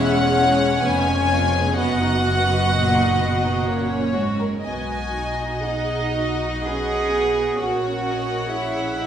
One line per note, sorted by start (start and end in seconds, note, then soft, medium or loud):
0.00 0.81 E1 medium
0.00 0.81 E2 loud
0.00 0.81 G#3 loud
0.00 1.73 C#4 loud
0.00 0.17 E4 medium
0.00 1.73 C#5 medium
0.00 0.82 F#5 loud
0.17 0.39 C#4 medium
0.39 0.62 G#3 medium
0.62 0.85 C#4 medium
0.83 1.77 F1 medium
0.83 1.77 F2 medium
0.83 1.05 B3 medium
0.83 3.68 B3 medium
0.83 1.77 G#5 loud
1.06 1.30 C#4 medium
1.30 1.54 F4 medium
1.55 1.78 G#4 medium
1.78 4.44 F#1 medium
1.78 2.64 F#2 medium
1.78 2.00 B3 medium
1.78 4.44 F#4 medium
1.78 3.65 D#5 medium
1.78 4.12 F#5 loud
2.01 2.25 D#4 medium
2.25 2.49 F#4 medium
2.48 2.72 B4 medium
2.73 3.17 A#2 loud
2.73 2.97 F#4 medium
2.96 3.20 D#4 medium
3.19 3.68 B2 medium
3.19 3.44 B3 medium
3.43 3.67 D#4 medium
3.67 4.16 A#2 medium
3.67 3.90 A#3 medium
3.67 4.43 C#4 medium
3.67 4.44 C#5 medium
3.92 4.16 C#4 medium
4.16 4.65 G#2 medium
4.16 4.40 F#4 medium
4.41 4.65 A#4 medium
4.63 7.55 B1 medium
4.63 5.10 B3 medium
4.63 5.59 F#4 medium
4.63 7.55 D#5 medium
4.63 5.59 G#5 loud
5.14 6.62 D#4 medium
5.62 6.60 D#4 medium
5.62 6.14 G#4 medium
5.62 6.66 F#5 medium
6.14 6.64 F#4 medium
6.63 7.13 C#4 medium
6.63 7.57 F#4 medium
6.63 7.58 G#4 medium
6.63 7.59 B4 medium
6.63 7.58 F#5 medium
7.12 7.59 B3 medium
7.59 9.07 A#1 medium
7.59 8.49 C#4 medium
7.59 8.51 F#4 medium
7.59 8.49 A#4 medium
7.59 9.07 C#5 medium
7.59 8.04 C#5 medium
7.59 9.07 F#5 medium
8.06 8.52 D#5 medium
8.50 8.96 C#4 medium
8.50 9.07 E4 medium
8.50 9.07 G#4 medium
8.50 9.07 E5 medium
8.97 9.07 D#4 medium